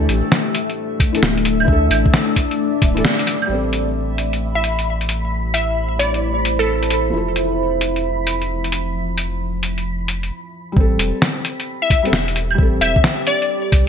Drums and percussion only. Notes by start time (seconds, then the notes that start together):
0.09 closed hi-hat
0.32 snare
0.55 closed hi-hat
0.70 closed hi-hat
1.00 kick, closed hi-hat
1.15 closed hi-hat
1.23 snare
1.38 closed hi-hat
1.45 closed hi-hat
1.60 claves
1.68 kick
1.91 closed hi-hat, claves
2.06 kick
2.14 snare
2.36 kick, closed hi-hat
2.51 closed hi-hat
2.82 kick, closed hi-hat
2.97 closed hi-hat
3.05 snare
3.19 closed hi-hat
3.27 closed hi-hat
3.42 claves
3.73 closed hi-hat
4.18 closed hi-hat
4.33 closed hi-hat
4.64 closed hi-hat
4.79 closed hi-hat
5.01 closed hi-hat
5.09 closed hi-hat
5.54 closed hi-hat
6.00 closed hi-hat
6.14 closed hi-hat
6.45 closed hi-hat
6.60 closed hi-hat
6.83 closed hi-hat
6.90 closed hi-hat
7.36 closed hi-hat
7.81 closed hi-hat
7.96 closed hi-hat
8.27 closed hi-hat
8.42 closed hi-hat
8.64 closed hi-hat
8.72 closed hi-hat
9.18 closed hi-hat
9.63 closed hi-hat
9.78 closed hi-hat
10.08 closed hi-hat
10.23 closed hi-hat
10.77 kick
10.99 closed hi-hat
11.22 snare
11.45 closed hi-hat
11.60 closed hi-hat
11.90 kick, closed hi-hat
12.05 closed hi-hat
12.13 snare
12.28 closed hi-hat
12.36 closed hi-hat
12.51 claves
12.58 kick
12.81 closed hi-hat, claves
12.96 kick
13.04 snare
13.27 closed hi-hat
13.42 closed hi-hat
13.72 kick, closed hi-hat